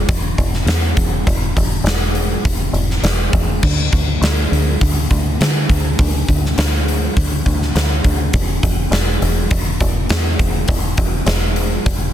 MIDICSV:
0, 0, Header, 1, 3, 480
1, 0, Start_track
1, 0, Tempo, 588813
1, 1034, Time_signature, 4, 2, 24, 8
1, 9891, End_track
2, 0, Start_track
2, 0, Title_t, "Fingered electric bass"
2, 0, Program_c, 0, 33
2, 68, Note_on_c, 0, 28, 91
2, 277, Note_off_c, 0, 28, 0
2, 308, Note_on_c, 0, 28, 86
2, 517, Note_off_c, 0, 28, 0
2, 538, Note_on_c, 0, 40, 93
2, 751, Note_off_c, 0, 40, 0
2, 790, Note_on_c, 0, 28, 85
2, 998, Note_off_c, 0, 28, 0
2, 1034, Note_on_c, 0, 28, 90
2, 1241, Note_off_c, 0, 28, 0
2, 1278, Note_on_c, 0, 28, 80
2, 1483, Note_off_c, 0, 28, 0
2, 1498, Note_on_c, 0, 28, 87
2, 1918, Note_off_c, 0, 28, 0
2, 1997, Note_on_c, 0, 28, 91
2, 2202, Note_off_c, 0, 28, 0
2, 2224, Note_on_c, 0, 28, 86
2, 2435, Note_off_c, 0, 28, 0
2, 2469, Note_on_c, 0, 28, 84
2, 2678, Note_off_c, 0, 28, 0
2, 2715, Note_on_c, 0, 28, 84
2, 2921, Note_off_c, 0, 28, 0
2, 2963, Note_on_c, 0, 38, 91
2, 3166, Note_off_c, 0, 38, 0
2, 3202, Note_on_c, 0, 38, 77
2, 3405, Note_off_c, 0, 38, 0
2, 3434, Note_on_c, 0, 38, 81
2, 3640, Note_off_c, 0, 38, 0
2, 3681, Note_on_c, 0, 38, 81
2, 3884, Note_off_c, 0, 38, 0
2, 3927, Note_on_c, 0, 38, 91
2, 4127, Note_off_c, 0, 38, 0
2, 4163, Note_on_c, 0, 38, 84
2, 4365, Note_off_c, 0, 38, 0
2, 4405, Note_on_c, 0, 50, 88
2, 4606, Note_off_c, 0, 50, 0
2, 4644, Note_on_c, 0, 38, 90
2, 4845, Note_off_c, 0, 38, 0
2, 4884, Note_on_c, 0, 38, 87
2, 5085, Note_off_c, 0, 38, 0
2, 5127, Note_on_c, 0, 38, 84
2, 5327, Note_off_c, 0, 38, 0
2, 5362, Note_on_c, 0, 38, 92
2, 5770, Note_off_c, 0, 38, 0
2, 5843, Note_on_c, 0, 38, 88
2, 6044, Note_off_c, 0, 38, 0
2, 6081, Note_on_c, 0, 38, 91
2, 6283, Note_off_c, 0, 38, 0
2, 6318, Note_on_c, 0, 38, 91
2, 6521, Note_off_c, 0, 38, 0
2, 6560, Note_on_c, 0, 38, 87
2, 6762, Note_off_c, 0, 38, 0
2, 6793, Note_on_c, 0, 28, 95
2, 6998, Note_off_c, 0, 28, 0
2, 7034, Note_on_c, 0, 28, 84
2, 7239, Note_off_c, 0, 28, 0
2, 7263, Note_on_c, 0, 28, 94
2, 7472, Note_off_c, 0, 28, 0
2, 7511, Note_on_c, 0, 28, 87
2, 7717, Note_off_c, 0, 28, 0
2, 7752, Note_on_c, 0, 28, 98
2, 7957, Note_off_c, 0, 28, 0
2, 7993, Note_on_c, 0, 28, 94
2, 8198, Note_off_c, 0, 28, 0
2, 8232, Note_on_c, 0, 40, 96
2, 8437, Note_off_c, 0, 40, 0
2, 8473, Note_on_c, 0, 28, 86
2, 8678, Note_off_c, 0, 28, 0
2, 8709, Note_on_c, 0, 28, 92
2, 8916, Note_off_c, 0, 28, 0
2, 8948, Note_on_c, 0, 28, 78
2, 9156, Note_off_c, 0, 28, 0
2, 9178, Note_on_c, 0, 28, 92
2, 9597, Note_off_c, 0, 28, 0
2, 9667, Note_on_c, 0, 28, 91
2, 9875, Note_off_c, 0, 28, 0
2, 9891, End_track
3, 0, Start_track
3, 0, Title_t, "Drums"
3, 71, Note_on_c, 9, 36, 111
3, 71, Note_on_c, 9, 46, 81
3, 152, Note_off_c, 9, 46, 0
3, 153, Note_off_c, 9, 36, 0
3, 312, Note_on_c, 9, 36, 69
3, 313, Note_on_c, 9, 46, 57
3, 394, Note_off_c, 9, 36, 0
3, 395, Note_off_c, 9, 46, 0
3, 436, Note_on_c, 9, 38, 29
3, 518, Note_off_c, 9, 38, 0
3, 549, Note_on_c, 9, 46, 78
3, 558, Note_on_c, 9, 38, 102
3, 631, Note_off_c, 9, 46, 0
3, 639, Note_off_c, 9, 38, 0
3, 788, Note_on_c, 9, 46, 68
3, 791, Note_on_c, 9, 36, 94
3, 870, Note_off_c, 9, 46, 0
3, 873, Note_off_c, 9, 36, 0
3, 1035, Note_on_c, 9, 36, 112
3, 1036, Note_on_c, 9, 46, 81
3, 1116, Note_off_c, 9, 36, 0
3, 1118, Note_off_c, 9, 46, 0
3, 1277, Note_on_c, 9, 36, 87
3, 1281, Note_on_c, 9, 46, 61
3, 1359, Note_off_c, 9, 36, 0
3, 1362, Note_off_c, 9, 46, 0
3, 1516, Note_on_c, 9, 46, 82
3, 1524, Note_on_c, 9, 38, 103
3, 1597, Note_off_c, 9, 46, 0
3, 1605, Note_off_c, 9, 38, 0
3, 1752, Note_on_c, 9, 46, 54
3, 1834, Note_off_c, 9, 46, 0
3, 1998, Note_on_c, 9, 36, 110
3, 2002, Note_on_c, 9, 46, 75
3, 2079, Note_off_c, 9, 36, 0
3, 2083, Note_off_c, 9, 46, 0
3, 2237, Note_on_c, 9, 46, 55
3, 2318, Note_off_c, 9, 46, 0
3, 2366, Note_on_c, 9, 38, 29
3, 2448, Note_off_c, 9, 38, 0
3, 2475, Note_on_c, 9, 46, 69
3, 2483, Note_on_c, 9, 38, 105
3, 2557, Note_off_c, 9, 46, 0
3, 2565, Note_off_c, 9, 38, 0
3, 2716, Note_on_c, 9, 36, 89
3, 2716, Note_on_c, 9, 46, 55
3, 2797, Note_off_c, 9, 46, 0
3, 2798, Note_off_c, 9, 36, 0
3, 2957, Note_on_c, 9, 49, 97
3, 2959, Note_on_c, 9, 36, 106
3, 3038, Note_off_c, 9, 49, 0
3, 3041, Note_off_c, 9, 36, 0
3, 3201, Note_on_c, 9, 46, 55
3, 3202, Note_on_c, 9, 36, 88
3, 3283, Note_off_c, 9, 36, 0
3, 3283, Note_off_c, 9, 46, 0
3, 3445, Note_on_c, 9, 46, 73
3, 3453, Note_on_c, 9, 38, 105
3, 3526, Note_off_c, 9, 46, 0
3, 3535, Note_off_c, 9, 38, 0
3, 3694, Note_on_c, 9, 46, 55
3, 3776, Note_off_c, 9, 46, 0
3, 3923, Note_on_c, 9, 36, 114
3, 3924, Note_on_c, 9, 46, 79
3, 4005, Note_off_c, 9, 36, 0
3, 4006, Note_off_c, 9, 46, 0
3, 4163, Note_on_c, 9, 36, 72
3, 4163, Note_on_c, 9, 46, 56
3, 4244, Note_off_c, 9, 36, 0
3, 4244, Note_off_c, 9, 46, 0
3, 4408, Note_on_c, 9, 46, 76
3, 4416, Note_on_c, 9, 38, 109
3, 4490, Note_off_c, 9, 46, 0
3, 4498, Note_off_c, 9, 38, 0
3, 4643, Note_on_c, 9, 36, 87
3, 4646, Note_on_c, 9, 46, 64
3, 4724, Note_off_c, 9, 36, 0
3, 4728, Note_off_c, 9, 46, 0
3, 4883, Note_on_c, 9, 36, 105
3, 4883, Note_on_c, 9, 46, 78
3, 4964, Note_off_c, 9, 36, 0
3, 4965, Note_off_c, 9, 46, 0
3, 5124, Note_on_c, 9, 36, 84
3, 5131, Note_on_c, 9, 46, 61
3, 5205, Note_off_c, 9, 36, 0
3, 5212, Note_off_c, 9, 46, 0
3, 5260, Note_on_c, 9, 38, 31
3, 5342, Note_off_c, 9, 38, 0
3, 5362, Note_on_c, 9, 46, 79
3, 5370, Note_on_c, 9, 38, 116
3, 5444, Note_off_c, 9, 46, 0
3, 5452, Note_off_c, 9, 38, 0
3, 5612, Note_on_c, 9, 46, 58
3, 5693, Note_off_c, 9, 46, 0
3, 5843, Note_on_c, 9, 36, 114
3, 5850, Note_on_c, 9, 46, 78
3, 5925, Note_off_c, 9, 36, 0
3, 5932, Note_off_c, 9, 46, 0
3, 6082, Note_on_c, 9, 36, 77
3, 6088, Note_on_c, 9, 46, 55
3, 6163, Note_off_c, 9, 36, 0
3, 6169, Note_off_c, 9, 46, 0
3, 6210, Note_on_c, 9, 38, 30
3, 6292, Note_off_c, 9, 38, 0
3, 6323, Note_on_c, 9, 46, 69
3, 6331, Note_on_c, 9, 38, 96
3, 6405, Note_off_c, 9, 46, 0
3, 6413, Note_off_c, 9, 38, 0
3, 6558, Note_on_c, 9, 36, 91
3, 6559, Note_on_c, 9, 46, 60
3, 6640, Note_off_c, 9, 36, 0
3, 6640, Note_off_c, 9, 46, 0
3, 6794, Note_on_c, 9, 46, 78
3, 6797, Note_on_c, 9, 36, 115
3, 6875, Note_off_c, 9, 46, 0
3, 6879, Note_off_c, 9, 36, 0
3, 7037, Note_on_c, 9, 36, 84
3, 7037, Note_on_c, 9, 46, 58
3, 7118, Note_off_c, 9, 36, 0
3, 7118, Note_off_c, 9, 46, 0
3, 7272, Note_on_c, 9, 46, 75
3, 7280, Note_on_c, 9, 38, 106
3, 7354, Note_off_c, 9, 46, 0
3, 7362, Note_off_c, 9, 38, 0
3, 7517, Note_on_c, 9, 46, 54
3, 7598, Note_off_c, 9, 46, 0
3, 7750, Note_on_c, 9, 46, 77
3, 7753, Note_on_c, 9, 36, 108
3, 7832, Note_off_c, 9, 46, 0
3, 7835, Note_off_c, 9, 36, 0
3, 7993, Note_on_c, 9, 46, 56
3, 7994, Note_on_c, 9, 36, 76
3, 8074, Note_off_c, 9, 46, 0
3, 8075, Note_off_c, 9, 36, 0
3, 8229, Note_on_c, 9, 46, 74
3, 8237, Note_on_c, 9, 38, 105
3, 8310, Note_off_c, 9, 46, 0
3, 8318, Note_off_c, 9, 38, 0
3, 8473, Note_on_c, 9, 36, 90
3, 8473, Note_on_c, 9, 46, 59
3, 8554, Note_off_c, 9, 46, 0
3, 8555, Note_off_c, 9, 36, 0
3, 8704, Note_on_c, 9, 46, 83
3, 8710, Note_on_c, 9, 36, 110
3, 8785, Note_off_c, 9, 46, 0
3, 8792, Note_off_c, 9, 36, 0
3, 8946, Note_on_c, 9, 46, 63
3, 8950, Note_on_c, 9, 36, 89
3, 9028, Note_off_c, 9, 46, 0
3, 9031, Note_off_c, 9, 36, 0
3, 9183, Note_on_c, 9, 46, 85
3, 9191, Note_on_c, 9, 38, 111
3, 9265, Note_off_c, 9, 46, 0
3, 9273, Note_off_c, 9, 38, 0
3, 9425, Note_on_c, 9, 46, 59
3, 9506, Note_off_c, 9, 46, 0
3, 9669, Note_on_c, 9, 46, 79
3, 9670, Note_on_c, 9, 36, 112
3, 9750, Note_off_c, 9, 46, 0
3, 9752, Note_off_c, 9, 36, 0
3, 9891, End_track
0, 0, End_of_file